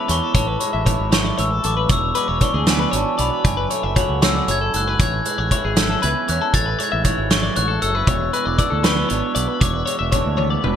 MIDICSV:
0, 0, Header, 1, 6, 480
1, 0, Start_track
1, 0, Tempo, 514580
1, 327, Time_signature, 6, 3, 24, 8
1, 10037, End_track
2, 0, Start_track
2, 0, Title_t, "Glockenspiel"
2, 0, Program_c, 0, 9
2, 0, Note_on_c, 0, 83, 75
2, 94, Note_off_c, 0, 83, 0
2, 100, Note_on_c, 0, 85, 75
2, 332, Note_on_c, 0, 81, 77
2, 341, Note_off_c, 0, 85, 0
2, 1059, Note_on_c, 0, 85, 80
2, 1074, Note_off_c, 0, 81, 0
2, 1303, Note_off_c, 0, 85, 0
2, 1303, Note_on_c, 0, 88, 82
2, 1545, Note_off_c, 0, 88, 0
2, 1551, Note_on_c, 0, 86, 77
2, 1789, Note_off_c, 0, 86, 0
2, 1796, Note_on_c, 0, 88, 93
2, 2023, Note_on_c, 0, 86, 79
2, 2031, Note_off_c, 0, 88, 0
2, 2265, Note_off_c, 0, 86, 0
2, 2265, Note_on_c, 0, 85, 87
2, 2370, Note_off_c, 0, 85, 0
2, 2517, Note_on_c, 0, 80, 77
2, 2752, Note_off_c, 0, 80, 0
2, 2757, Note_on_c, 0, 81, 80
2, 2987, Note_on_c, 0, 83, 74
2, 2993, Note_off_c, 0, 81, 0
2, 3093, Note_off_c, 0, 83, 0
2, 3230, Note_on_c, 0, 80, 80
2, 3905, Note_off_c, 0, 80, 0
2, 3957, Note_on_c, 0, 88, 92
2, 4192, Note_off_c, 0, 88, 0
2, 4208, Note_on_c, 0, 92, 90
2, 4438, Note_off_c, 0, 92, 0
2, 4443, Note_on_c, 0, 90, 86
2, 4675, Note_off_c, 0, 90, 0
2, 4681, Note_on_c, 0, 92, 85
2, 4911, Note_on_c, 0, 90, 76
2, 4914, Note_off_c, 0, 92, 0
2, 5126, Note_off_c, 0, 90, 0
2, 5384, Note_on_c, 0, 88, 68
2, 5625, Note_on_c, 0, 92, 80
2, 5626, Note_off_c, 0, 88, 0
2, 5866, Note_off_c, 0, 92, 0
2, 5872, Note_on_c, 0, 90, 81
2, 6103, Note_on_c, 0, 93, 86
2, 6109, Note_off_c, 0, 90, 0
2, 6344, Note_off_c, 0, 93, 0
2, 6373, Note_on_c, 0, 92, 79
2, 6577, Note_off_c, 0, 92, 0
2, 6816, Note_on_c, 0, 85, 86
2, 7059, Note_on_c, 0, 90, 89
2, 7060, Note_off_c, 0, 85, 0
2, 7296, Note_on_c, 0, 88, 95
2, 7301, Note_off_c, 0, 90, 0
2, 7739, Note_off_c, 0, 88, 0
2, 7776, Note_on_c, 0, 90, 90
2, 8015, Note_on_c, 0, 88, 78
2, 8019, Note_off_c, 0, 90, 0
2, 8235, Note_off_c, 0, 88, 0
2, 8262, Note_on_c, 0, 85, 78
2, 8969, Note_on_c, 0, 86, 73
2, 8995, Note_off_c, 0, 85, 0
2, 9889, Note_off_c, 0, 86, 0
2, 10037, End_track
3, 0, Start_track
3, 0, Title_t, "Clean electric guitar"
3, 0, Program_c, 1, 27
3, 79, Note_on_c, 1, 73, 64
3, 208, Note_off_c, 1, 73, 0
3, 208, Note_on_c, 1, 69, 61
3, 321, Note_off_c, 1, 69, 0
3, 325, Note_on_c, 1, 73, 88
3, 441, Note_off_c, 1, 73, 0
3, 441, Note_on_c, 1, 71, 65
3, 558, Note_off_c, 1, 71, 0
3, 562, Note_on_c, 1, 73, 70
3, 678, Note_off_c, 1, 73, 0
3, 682, Note_on_c, 1, 76, 66
3, 797, Note_off_c, 1, 76, 0
3, 801, Note_on_c, 1, 73, 67
3, 1034, Note_off_c, 1, 73, 0
3, 1045, Note_on_c, 1, 73, 73
3, 1160, Note_off_c, 1, 73, 0
3, 1160, Note_on_c, 1, 74, 65
3, 1280, Note_off_c, 1, 74, 0
3, 1284, Note_on_c, 1, 73, 67
3, 1406, Note_off_c, 1, 73, 0
3, 1406, Note_on_c, 1, 69, 62
3, 1525, Note_off_c, 1, 69, 0
3, 1536, Note_on_c, 1, 69, 65
3, 1646, Note_off_c, 1, 69, 0
3, 1650, Note_on_c, 1, 71, 60
3, 1769, Note_off_c, 1, 71, 0
3, 1769, Note_on_c, 1, 73, 87
3, 2002, Note_off_c, 1, 73, 0
3, 2005, Note_on_c, 1, 71, 70
3, 2125, Note_off_c, 1, 71, 0
3, 2125, Note_on_c, 1, 73, 64
3, 2241, Note_off_c, 1, 73, 0
3, 2252, Note_on_c, 1, 73, 68
3, 2365, Note_off_c, 1, 73, 0
3, 2369, Note_on_c, 1, 68, 66
3, 2489, Note_off_c, 1, 68, 0
3, 2489, Note_on_c, 1, 71, 76
3, 2596, Note_off_c, 1, 71, 0
3, 2607, Note_on_c, 1, 71, 59
3, 2715, Note_off_c, 1, 71, 0
3, 2719, Note_on_c, 1, 73, 71
3, 2960, Note_off_c, 1, 73, 0
3, 2964, Note_on_c, 1, 74, 61
3, 3083, Note_off_c, 1, 74, 0
3, 3083, Note_on_c, 1, 71, 64
3, 3213, Note_off_c, 1, 71, 0
3, 3213, Note_on_c, 1, 73, 84
3, 3327, Note_off_c, 1, 73, 0
3, 3331, Note_on_c, 1, 71, 67
3, 3452, Note_off_c, 1, 71, 0
3, 3456, Note_on_c, 1, 73, 68
3, 3576, Note_off_c, 1, 73, 0
3, 3576, Note_on_c, 1, 76, 67
3, 3689, Note_off_c, 1, 76, 0
3, 3693, Note_on_c, 1, 73, 69
3, 3927, Note_off_c, 1, 73, 0
3, 3938, Note_on_c, 1, 73, 76
3, 4056, Note_off_c, 1, 73, 0
3, 4061, Note_on_c, 1, 74, 58
3, 4178, Note_off_c, 1, 74, 0
3, 4181, Note_on_c, 1, 73, 66
3, 4298, Note_off_c, 1, 73, 0
3, 4303, Note_on_c, 1, 69, 69
3, 4415, Note_off_c, 1, 69, 0
3, 4426, Note_on_c, 1, 69, 65
3, 4549, Note_off_c, 1, 69, 0
3, 4549, Note_on_c, 1, 71, 65
3, 4664, Note_off_c, 1, 71, 0
3, 4664, Note_on_c, 1, 73, 86
3, 4906, Note_off_c, 1, 73, 0
3, 4906, Note_on_c, 1, 71, 63
3, 5020, Note_off_c, 1, 71, 0
3, 5020, Note_on_c, 1, 73, 68
3, 5137, Note_off_c, 1, 73, 0
3, 5147, Note_on_c, 1, 73, 63
3, 5260, Note_off_c, 1, 73, 0
3, 5268, Note_on_c, 1, 68, 59
3, 5380, Note_off_c, 1, 68, 0
3, 5387, Note_on_c, 1, 69, 80
3, 5490, Note_off_c, 1, 69, 0
3, 5502, Note_on_c, 1, 69, 61
3, 5612, Note_off_c, 1, 69, 0
3, 5616, Note_on_c, 1, 71, 67
3, 5858, Note_off_c, 1, 71, 0
3, 5858, Note_on_c, 1, 73, 68
3, 5975, Note_off_c, 1, 73, 0
3, 5984, Note_on_c, 1, 69, 66
3, 6097, Note_off_c, 1, 69, 0
3, 6097, Note_on_c, 1, 73, 84
3, 6212, Note_off_c, 1, 73, 0
3, 6212, Note_on_c, 1, 71, 68
3, 6331, Note_off_c, 1, 71, 0
3, 6331, Note_on_c, 1, 73, 70
3, 6450, Note_off_c, 1, 73, 0
3, 6454, Note_on_c, 1, 76, 67
3, 6571, Note_off_c, 1, 76, 0
3, 6574, Note_on_c, 1, 73, 69
3, 6804, Note_off_c, 1, 73, 0
3, 6815, Note_on_c, 1, 73, 75
3, 6927, Note_off_c, 1, 73, 0
3, 6931, Note_on_c, 1, 74, 68
3, 7047, Note_off_c, 1, 74, 0
3, 7051, Note_on_c, 1, 73, 71
3, 7163, Note_on_c, 1, 69, 71
3, 7171, Note_off_c, 1, 73, 0
3, 7282, Note_off_c, 1, 69, 0
3, 7293, Note_on_c, 1, 69, 66
3, 7414, Note_off_c, 1, 69, 0
3, 7414, Note_on_c, 1, 71, 63
3, 7532, Note_off_c, 1, 71, 0
3, 7537, Note_on_c, 1, 73, 85
3, 7769, Note_off_c, 1, 73, 0
3, 7773, Note_on_c, 1, 71, 70
3, 7887, Note_off_c, 1, 71, 0
3, 7887, Note_on_c, 1, 74, 65
3, 7995, Note_off_c, 1, 74, 0
3, 8006, Note_on_c, 1, 74, 71
3, 8118, Note_on_c, 1, 69, 64
3, 8127, Note_off_c, 1, 74, 0
3, 8241, Note_on_c, 1, 71, 76
3, 8243, Note_off_c, 1, 69, 0
3, 8354, Note_off_c, 1, 71, 0
3, 8365, Note_on_c, 1, 71, 66
3, 8478, Note_off_c, 1, 71, 0
3, 8478, Note_on_c, 1, 73, 70
3, 8716, Note_off_c, 1, 73, 0
3, 8720, Note_on_c, 1, 74, 68
3, 8843, Note_off_c, 1, 74, 0
3, 8843, Note_on_c, 1, 71, 65
3, 8961, Note_off_c, 1, 71, 0
3, 8961, Note_on_c, 1, 73, 87
3, 9082, Note_off_c, 1, 73, 0
3, 9082, Note_on_c, 1, 71, 69
3, 9190, Note_off_c, 1, 71, 0
3, 9194, Note_on_c, 1, 73, 66
3, 9313, Note_off_c, 1, 73, 0
3, 9317, Note_on_c, 1, 76, 64
3, 9435, Note_off_c, 1, 76, 0
3, 9439, Note_on_c, 1, 73, 70
3, 9664, Note_off_c, 1, 73, 0
3, 9675, Note_on_c, 1, 73, 74
3, 9794, Note_off_c, 1, 73, 0
3, 9798, Note_on_c, 1, 74, 65
3, 9921, Note_off_c, 1, 74, 0
3, 9923, Note_on_c, 1, 71, 67
3, 10037, Note_off_c, 1, 71, 0
3, 10037, End_track
4, 0, Start_track
4, 0, Title_t, "Clean electric guitar"
4, 0, Program_c, 2, 27
4, 0, Note_on_c, 2, 40, 56
4, 0, Note_on_c, 2, 52, 63
4, 0, Note_on_c, 2, 56, 56
4, 0, Note_on_c, 2, 64, 57
4, 81, Note_on_c, 2, 61, 54
4, 294, Note_off_c, 2, 40, 0
4, 296, Note_off_c, 2, 61, 0
4, 317, Note_on_c, 2, 45, 65
4, 345, Note_off_c, 2, 56, 0
4, 575, Note_on_c, 2, 56, 57
4, 802, Note_off_c, 2, 52, 0
4, 806, Note_on_c, 2, 52, 62
4, 810, Note_off_c, 2, 64, 0
4, 814, Note_on_c, 2, 64, 62
4, 1035, Note_off_c, 2, 45, 0
4, 1046, Note_on_c, 2, 45, 64
4, 1289, Note_off_c, 2, 45, 0
4, 1290, Note_on_c, 2, 44, 54
4, 1520, Note_off_c, 2, 44, 0
4, 1524, Note_on_c, 2, 42, 62
4, 1742, Note_off_c, 2, 52, 0
4, 1746, Note_off_c, 2, 64, 0
4, 1747, Note_off_c, 2, 56, 0
4, 1768, Note_off_c, 2, 42, 0
4, 1780, Note_on_c, 2, 40, 66
4, 2020, Note_on_c, 2, 56, 57
4, 2251, Note_on_c, 2, 52, 64
4, 2257, Note_on_c, 2, 62, 65
4, 2504, Note_on_c, 2, 59, 58
4, 2734, Note_off_c, 2, 62, 0
4, 2741, Note_on_c, 2, 47, 57
4, 2745, Note_on_c, 2, 62, 58
4, 2974, Note_off_c, 2, 59, 0
4, 2985, Note_on_c, 2, 59, 54
4, 3184, Note_off_c, 2, 52, 0
4, 3189, Note_off_c, 2, 40, 0
4, 3189, Note_off_c, 2, 47, 0
4, 3189, Note_off_c, 2, 56, 0
4, 3191, Note_off_c, 2, 59, 0
4, 3216, Note_on_c, 2, 42, 66
4, 3472, Note_on_c, 2, 57, 55
4, 3698, Note_off_c, 2, 62, 0
4, 3702, Note_on_c, 2, 66, 61
4, 3932, Note_off_c, 2, 42, 0
4, 3935, Note_on_c, 2, 40, 61
4, 4175, Note_off_c, 2, 40, 0
4, 4182, Note_on_c, 2, 42, 55
4, 4418, Note_off_c, 2, 42, 0
4, 4422, Note_on_c, 2, 44, 57
4, 4629, Note_off_c, 2, 66, 0
4, 4658, Note_off_c, 2, 44, 0
4, 4663, Note_on_c, 2, 45, 65
4, 4898, Note_off_c, 2, 57, 0
4, 4902, Note_on_c, 2, 56, 56
4, 5139, Note_on_c, 2, 52, 61
4, 5145, Note_on_c, 2, 64, 62
4, 5391, Note_on_c, 2, 61, 57
4, 5618, Note_off_c, 2, 45, 0
4, 5620, Note_on_c, 2, 40, 59
4, 5625, Note_off_c, 2, 64, 0
4, 5628, Note_on_c, 2, 64, 56
4, 5858, Note_off_c, 2, 61, 0
4, 5870, Note_on_c, 2, 61, 55
4, 6067, Note_off_c, 2, 40, 0
4, 6072, Note_off_c, 2, 61, 0
4, 6097, Note_on_c, 2, 45, 65
4, 6125, Note_off_c, 2, 56, 0
4, 6341, Note_on_c, 2, 56, 54
4, 6574, Note_off_c, 2, 52, 0
4, 6577, Note_on_c, 2, 52, 63
4, 6580, Note_off_c, 2, 64, 0
4, 6584, Note_on_c, 2, 64, 66
4, 6804, Note_off_c, 2, 45, 0
4, 6815, Note_on_c, 2, 45, 60
4, 7047, Note_on_c, 2, 44, 59
4, 7053, Note_off_c, 2, 45, 0
4, 7285, Note_off_c, 2, 44, 0
4, 7288, Note_on_c, 2, 42, 57
4, 7521, Note_off_c, 2, 42, 0
4, 7525, Note_on_c, 2, 40, 63
4, 7774, Note_off_c, 2, 56, 0
4, 7778, Note_on_c, 2, 56, 57
4, 8004, Note_off_c, 2, 52, 0
4, 8007, Note_on_c, 2, 52, 64
4, 8008, Note_off_c, 2, 64, 0
4, 8011, Note_on_c, 2, 62, 67
4, 8242, Note_on_c, 2, 57, 61
4, 8359, Note_off_c, 2, 57, 0
4, 8359, Note_on_c, 2, 59, 48
4, 8482, Note_on_c, 2, 47, 57
4, 8487, Note_off_c, 2, 62, 0
4, 8491, Note_on_c, 2, 62, 60
4, 8723, Note_off_c, 2, 59, 0
4, 8732, Note_on_c, 2, 59, 55
4, 8935, Note_off_c, 2, 40, 0
4, 8935, Note_off_c, 2, 47, 0
4, 8941, Note_off_c, 2, 59, 0
4, 8962, Note_on_c, 2, 40, 63
4, 9208, Note_off_c, 2, 56, 0
4, 9212, Note_on_c, 2, 56, 57
4, 9443, Note_off_c, 2, 62, 0
4, 9444, Note_off_c, 2, 52, 0
4, 9447, Note_on_c, 2, 52, 65
4, 9454, Note_on_c, 2, 62, 64
4, 9692, Note_on_c, 2, 59, 57
4, 9919, Note_off_c, 2, 62, 0
4, 9925, Note_on_c, 2, 47, 55
4, 9930, Note_on_c, 2, 62, 57
4, 10037, Note_off_c, 2, 40, 0
4, 10037, Note_off_c, 2, 47, 0
4, 10037, Note_off_c, 2, 52, 0
4, 10037, Note_off_c, 2, 56, 0
4, 10037, Note_off_c, 2, 59, 0
4, 10037, Note_off_c, 2, 62, 0
4, 10037, End_track
5, 0, Start_track
5, 0, Title_t, "Fingered electric bass"
5, 0, Program_c, 3, 33
5, 86, Note_on_c, 3, 40, 93
5, 182, Note_off_c, 3, 40, 0
5, 320, Note_on_c, 3, 33, 91
5, 515, Note_off_c, 3, 33, 0
5, 693, Note_on_c, 3, 33, 71
5, 883, Note_off_c, 3, 33, 0
5, 930, Note_on_c, 3, 32, 70
5, 1217, Note_off_c, 3, 32, 0
5, 1296, Note_on_c, 3, 33, 90
5, 1486, Note_off_c, 3, 33, 0
5, 1536, Note_on_c, 3, 33, 80
5, 1726, Note_off_c, 3, 33, 0
5, 1771, Note_on_c, 3, 28, 85
5, 1963, Note_off_c, 3, 28, 0
5, 2133, Note_on_c, 3, 28, 78
5, 2229, Note_off_c, 3, 28, 0
5, 2370, Note_on_c, 3, 38, 84
5, 2659, Note_off_c, 3, 38, 0
5, 2733, Note_on_c, 3, 32, 87
5, 2829, Note_off_c, 3, 32, 0
5, 2978, Note_on_c, 3, 35, 89
5, 3072, Note_off_c, 3, 35, 0
5, 3214, Note_on_c, 3, 30, 91
5, 3405, Note_off_c, 3, 30, 0
5, 3580, Note_on_c, 3, 30, 74
5, 3769, Note_off_c, 3, 30, 0
5, 3816, Note_on_c, 3, 37, 75
5, 4102, Note_off_c, 3, 37, 0
5, 4178, Note_on_c, 3, 30, 85
5, 4368, Note_off_c, 3, 30, 0
5, 4424, Note_on_c, 3, 30, 76
5, 4611, Note_off_c, 3, 30, 0
5, 4660, Note_on_c, 3, 33, 83
5, 4849, Note_off_c, 3, 33, 0
5, 5023, Note_on_c, 3, 33, 79
5, 5115, Note_off_c, 3, 33, 0
5, 5267, Note_on_c, 3, 32, 83
5, 5548, Note_off_c, 3, 32, 0
5, 5633, Note_on_c, 3, 37, 93
5, 5720, Note_off_c, 3, 37, 0
5, 5869, Note_on_c, 3, 40, 92
5, 5958, Note_off_c, 3, 40, 0
5, 6099, Note_on_c, 3, 33, 91
5, 6287, Note_off_c, 3, 33, 0
5, 6465, Note_on_c, 3, 33, 71
5, 6650, Note_off_c, 3, 33, 0
5, 6698, Note_on_c, 3, 32, 72
5, 6981, Note_off_c, 3, 32, 0
5, 7063, Note_on_c, 3, 33, 83
5, 7249, Note_off_c, 3, 33, 0
5, 7297, Note_on_c, 3, 30, 85
5, 7485, Note_off_c, 3, 30, 0
5, 7530, Note_on_c, 3, 28, 84
5, 7721, Note_off_c, 3, 28, 0
5, 7895, Note_on_c, 3, 28, 74
5, 7988, Note_off_c, 3, 28, 0
5, 8134, Note_on_c, 3, 38, 84
5, 8417, Note_off_c, 3, 38, 0
5, 8498, Note_on_c, 3, 32, 87
5, 8589, Note_off_c, 3, 32, 0
5, 8730, Note_on_c, 3, 35, 87
5, 8824, Note_off_c, 3, 35, 0
5, 8966, Note_on_c, 3, 28, 86
5, 9157, Note_off_c, 3, 28, 0
5, 9332, Note_on_c, 3, 28, 70
5, 9520, Note_off_c, 3, 28, 0
5, 9571, Note_on_c, 3, 38, 68
5, 9855, Note_off_c, 3, 38, 0
5, 9926, Note_on_c, 3, 28, 78
5, 10037, Note_off_c, 3, 28, 0
5, 10037, End_track
6, 0, Start_track
6, 0, Title_t, "Drums"
6, 85, Note_on_c, 9, 42, 66
6, 178, Note_off_c, 9, 42, 0
6, 323, Note_on_c, 9, 36, 98
6, 323, Note_on_c, 9, 42, 90
6, 416, Note_off_c, 9, 36, 0
6, 416, Note_off_c, 9, 42, 0
6, 564, Note_on_c, 9, 42, 66
6, 657, Note_off_c, 9, 42, 0
6, 806, Note_on_c, 9, 36, 76
6, 808, Note_on_c, 9, 42, 69
6, 899, Note_off_c, 9, 36, 0
6, 901, Note_off_c, 9, 42, 0
6, 1046, Note_on_c, 9, 42, 83
6, 1050, Note_on_c, 9, 38, 99
6, 1139, Note_off_c, 9, 42, 0
6, 1143, Note_off_c, 9, 38, 0
6, 1290, Note_on_c, 9, 42, 65
6, 1383, Note_off_c, 9, 42, 0
6, 1525, Note_on_c, 9, 42, 62
6, 1619, Note_off_c, 9, 42, 0
6, 1764, Note_on_c, 9, 42, 78
6, 1768, Note_on_c, 9, 36, 97
6, 1857, Note_off_c, 9, 42, 0
6, 1861, Note_off_c, 9, 36, 0
6, 2005, Note_on_c, 9, 42, 63
6, 2098, Note_off_c, 9, 42, 0
6, 2245, Note_on_c, 9, 42, 59
6, 2249, Note_on_c, 9, 36, 75
6, 2339, Note_off_c, 9, 42, 0
6, 2342, Note_off_c, 9, 36, 0
6, 2486, Note_on_c, 9, 42, 78
6, 2490, Note_on_c, 9, 38, 100
6, 2580, Note_off_c, 9, 42, 0
6, 2583, Note_off_c, 9, 38, 0
6, 2732, Note_on_c, 9, 42, 66
6, 2825, Note_off_c, 9, 42, 0
6, 2970, Note_on_c, 9, 42, 59
6, 3063, Note_off_c, 9, 42, 0
6, 3215, Note_on_c, 9, 42, 79
6, 3216, Note_on_c, 9, 36, 105
6, 3309, Note_off_c, 9, 36, 0
6, 3309, Note_off_c, 9, 42, 0
6, 3456, Note_on_c, 9, 42, 61
6, 3549, Note_off_c, 9, 42, 0
6, 3696, Note_on_c, 9, 36, 79
6, 3696, Note_on_c, 9, 42, 66
6, 3789, Note_off_c, 9, 42, 0
6, 3790, Note_off_c, 9, 36, 0
6, 3937, Note_on_c, 9, 42, 84
6, 3941, Note_on_c, 9, 38, 103
6, 4030, Note_off_c, 9, 42, 0
6, 4034, Note_off_c, 9, 38, 0
6, 4180, Note_on_c, 9, 42, 67
6, 4273, Note_off_c, 9, 42, 0
6, 4418, Note_on_c, 9, 42, 62
6, 4511, Note_off_c, 9, 42, 0
6, 4659, Note_on_c, 9, 42, 81
6, 4660, Note_on_c, 9, 36, 109
6, 4753, Note_off_c, 9, 36, 0
6, 4753, Note_off_c, 9, 42, 0
6, 4900, Note_on_c, 9, 42, 65
6, 4994, Note_off_c, 9, 42, 0
6, 5141, Note_on_c, 9, 36, 75
6, 5142, Note_on_c, 9, 42, 68
6, 5234, Note_off_c, 9, 36, 0
6, 5235, Note_off_c, 9, 42, 0
6, 5377, Note_on_c, 9, 42, 90
6, 5380, Note_on_c, 9, 38, 105
6, 5470, Note_off_c, 9, 42, 0
6, 5474, Note_off_c, 9, 38, 0
6, 5620, Note_on_c, 9, 42, 67
6, 5713, Note_off_c, 9, 42, 0
6, 5861, Note_on_c, 9, 42, 62
6, 5954, Note_off_c, 9, 42, 0
6, 6097, Note_on_c, 9, 42, 82
6, 6098, Note_on_c, 9, 36, 97
6, 6190, Note_off_c, 9, 42, 0
6, 6191, Note_off_c, 9, 36, 0
6, 6340, Note_on_c, 9, 42, 63
6, 6433, Note_off_c, 9, 42, 0
6, 6572, Note_on_c, 9, 42, 60
6, 6575, Note_on_c, 9, 36, 80
6, 6665, Note_off_c, 9, 42, 0
6, 6668, Note_off_c, 9, 36, 0
6, 6814, Note_on_c, 9, 42, 80
6, 6818, Note_on_c, 9, 38, 99
6, 6907, Note_off_c, 9, 42, 0
6, 6911, Note_off_c, 9, 38, 0
6, 7053, Note_on_c, 9, 42, 63
6, 7146, Note_off_c, 9, 42, 0
6, 7293, Note_on_c, 9, 42, 56
6, 7386, Note_off_c, 9, 42, 0
6, 7531, Note_on_c, 9, 36, 102
6, 7531, Note_on_c, 9, 42, 77
6, 7624, Note_off_c, 9, 36, 0
6, 7624, Note_off_c, 9, 42, 0
6, 7774, Note_on_c, 9, 42, 60
6, 7867, Note_off_c, 9, 42, 0
6, 8009, Note_on_c, 9, 36, 81
6, 8010, Note_on_c, 9, 42, 69
6, 8102, Note_off_c, 9, 36, 0
6, 8103, Note_off_c, 9, 42, 0
6, 8244, Note_on_c, 9, 42, 84
6, 8248, Note_on_c, 9, 38, 104
6, 8337, Note_off_c, 9, 42, 0
6, 8341, Note_off_c, 9, 38, 0
6, 8485, Note_on_c, 9, 42, 64
6, 8578, Note_off_c, 9, 42, 0
6, 8726, Note_on_c, 9, 42, 64
6, 8819, Note_off_c, 9, 42, 0
6, 8967, Note_on_c, 9, 36, 102
6, 8967, Note_on_c, 9, 42, 85
6, 9060, Note_off_c, 9, 36, 0
6, 9060, Note_off_c, 9, 42, 0
6, 9207, Note_on_c, 9, 42, 65
6, 9301, Note_off_c, 9, 42, 0
6, 9441, Note_on_c, 9, 42, 68
6, 9444, Note_on_c, 9, 36, 74
6, 9534, Note_off_c, 9, 42, 0
6, 9537, Note_off_c, 9, 36, 0
6, 9682, Note_on_c, 9, 48, 54
6, 9775, Note_off_c, 9, 48, 0
6, 9924, Note_on_c, 9, 47, 74
6, 10017, Note_off_c, 9, 47, 0
6, 10037, End_track
0, 0, End_of_file